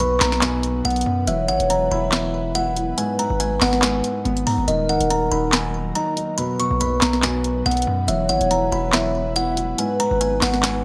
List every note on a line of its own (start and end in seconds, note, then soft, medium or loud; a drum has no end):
0.00 0.20 B1 loud
0.00 0.43 B2 medium
0.00 2.94 F#3 medium
0.00 1.26 B3 medium
0.00 1.24 D#4 medium
0.00 0.81 B4 loud
0.00 4.64 B4 medium
0.00 0.17 B5 medium
0.00 closed hi-hat medium
0.20 0.82 B1 loud
0.20 0.84 B3 loud
0.20 0.39 A#5 medium
0.20 snare loud
0.20 clap medium
0.20 closed hi-hat medium
0.32 snare medium
0.42 1.28 B2 medium
0.42 0.83 G#5 medium
0.42 snare loud
0.42 clap medium
0.42 closed hi-hat medium
0.63 closed hi-hat medium
0.85 1.05 B1 loud
0.85 1.05 B3 loud
0.85 1.25 F#5 medium
0.85 closed hi-hat soft
0.90 closed hi-hat medium
0.96 closed hi-hat medium
1.01 closed hi-hat medium
1.06 1.27 F#2 loud
1.06 1.27 B3 medium
1.27 1.50 E1 loud
1.27 1.47 E3 medium
1.27 4.65 B3 medium
1.27 2.96 E4 medium
1.27 2.51 C#5 loud
1.27 1.45 E5 medium
1.27 closed hi-hat medium
1.48 1.59 G#1 loud
1.48 1.69 E3 medium
1.48 1.66 F#5 medium
1.48 closed hi-hat soft
1.60 1.90 E1 loud
1.60 closed hi-hat medium
1.70 2.10 E3 medium
1.70 1.87 A#5 medium
1.70 closed hi-hat medium
1.91 2.94 E1 loud
1.91 2.54 E4 loud
1.91 2.09 B5 medium
2.12 2.97 E3 medium
2.12 2.53 E5 medium
2.12 snare loud
2.12 clap medium
2.12 closed hi-hat medium
2.55 2.75 E4 loud
2.55 2.95 F#5 medium
2.55 closed hi-hat medium
2.76 2.98 E4 medium
2.76 closed hi-hat medium
2.98 3.18 G#2 medium
2.98 4.66 G#3 medium
2.98 6.35 D#4 medium
2.98 4.21 B4 loud
2.98 3.15 G#5 medium
2.98 closed hi-hat medium
3.19 3.39 G#2 medium
3.19 3.36 A#5 medium
3.19 closed hi-hat medium
3.30 3.60 G#1 loud
3.40 3.81 G#2 medium
3.40 3.57 G#5 medium
3.40 closed hi-hat medium
3.61 4.02 G#1 loud
3.61 4.23 B3 medium
3.61 3.79 F#5 medium
3.61 snare loud
3.61 clap medium
3.61 open hi-hat medium
3.73 snare medium
3.82 4.68 G#2 medium
3.82 4.43 G#5 medium
3.82 snare loud
3.82 clap medium
3.82 closed hi-hat medium
4.04 closed hi-hat medium
4.25 4.46 G#1 loud
4.25 4.45 B3 loud
4.25 closed hi-hat medium
4.37 closed hi-hat medium
4.47 4.57 G#2 loud
4.47 4.68 B3 medium
4.47 4.64 A#5 medium
4.47 open hi-hat medium
4.58 4.68 G#1 loud
4.68 4.91 D#1 loud
4.68 4.87 D#3 medium
4.68 6.37 F#3 medium
4.68 6.37 A#3 medium
4.68 5.92 A#4 loud
4.68 6.37 A#4 medium
4.68 4.85 D#5 medium
4.68 closed hi-hat medium
4.89 5.00 C#1 loud
4.89 5.09 D#3 medium
4.89 5.07 F#5 medium
4.89 closed hi-hat soft
5.01 5.31 D#1 loud
5.01 closed hi-hat medium
5.10 5.51 D#3 medium
5.10 5.28 A#5 medium
5.10 closed hi-hat medium
5.32 5.93 D#1 loud
5.32 5.94 D#4 medium
5.32 5.49 B5 medium
5.52 6.38 D#3 medium
5.52 5.93 G#5 medium
5.52 snare loud
5.52 clap medium
5.52 closed hi-hat medium
5.95 6.15 D#4 loud
5.95 6.35 A#5 medium
5.95 closed hi-hat medium
6.16 6.38 D#4 medium
6.16 closed hi-hat medium
6.38 6.58 B2 medium
6.38 9.75 F#3 medium
6.38 10.85 B3 medium
6.38 8.07 D#4 medium
6.38 7.62 B4 loud
6.38 10.85 B4 medium
6.38 6.55 B5 medium
6.38 closed hi-hat medium
6.59 6.79 B2 medium
6.59 6.77 C#6 medium
6.59 closed hi-hat medium
6.71 7.01 B1 loud
6.81 7.22 B2 medium
6.81 6.98 B5 medium
6.81 closed hi-hat medium
7.01 7.63 B1 loud
7.01 7.64 B3 medium
7.01 7.19 A#5 medium
7.01 snare loud
7.01 clap medium
7.01 closed hi-hat medium
7.13 snare medium
7.23 8.08 B2 medium
7.23 7.63 G#5 medium
7.23 snare loud
7.23 clap loud
7.23 closed hi-hat medium
7.44 closed hi-hat medium
7.66 7.86 B1 loud
7.66 7.86 B3 loud
7.66 8.06 F#5 medium
7.66 closed hi-hat soft
7.71 closed hi-hat medium
7.77 closed hi-hat medium
7.82 closed hi-hat medium
7.87 8.08 F#2 loud
7.87 8.08 B3 medium
8.08 8.31 E1 loud
8.08 8.28 E3 medium
8.08 9.77 E4 medium
8.08 9.32 C#5 loud
8.08 8.25 E5 medium
8.08 closed hi-hat medium
8.29 8.40 G#1 loud
8.29 8.50 E3 medium
8.29 8.47 F#5 medium
8.29 closed hi-hat soft
8.41 8.71 E1 loud
8.41 closed hi-hat medium
8.51 8.91 E3 medium
8.51 8.68 A#5 medium
8.51 closed hi-hat medium
8.72 9.75 E1 loud
8.72 9.35 E4 loud
8.72 8.90 B5 medium
8.93 9.78 E3 medium
8.93 9.34 E5 medium
8.93 snare loud
8.93 clap medium
8.93 closed hi-hat medium
9.36 9.56 E4 loud
9.36 9.76 F#5 medium
9.36 closed hi-hat medium
9.57 9.78 E4 medium
9.57 closed hi-hat medium
9.78 9.98 G#2 medium
9.78 10.85 G#3 medium
9.78 10.85 D#4 medium
9.78 10.85 B4 loud
9.78 9.96 G#5 medium
9.78 closed hi-hat medium
10.00 10.20 G#2 medium
10.00 10.17 A#5 medium
10.00 closed hi-hat medium
10.11 10.41 G#1 loud
10.21 10.62 G#2 medium
10.21 10.38 G#5 medium
10.21 closed hi-hat medium
10.41 10.85 G#1 loud
10.41 10.85 B3 medium
10.41 10.60 F#5 medium
10.41 snare loud
10.41 clap medium
10.41 open hi-hat medium
10.54 snare medium
10.63 10.85 G#2 medium
10.63 10.85 G#5 loud
10.63 snare loud
10.63 clap loud
10.63 closed hi-hat medium